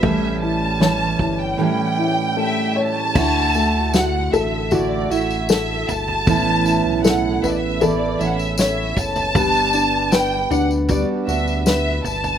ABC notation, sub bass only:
X:1
M:4/4
L:1/16
Q:1/4=78
K:D
V:1 name="Sub bass" clef=bass
A,,,6 G,,,2 z8 | D,,6 A,,,4 A,,,4 G,,,2 | A,,,3 B,,,3 A,,,4 A,,,4 F,,,2 | G,,,6 D,,3 z D,,4 G,,,2 |]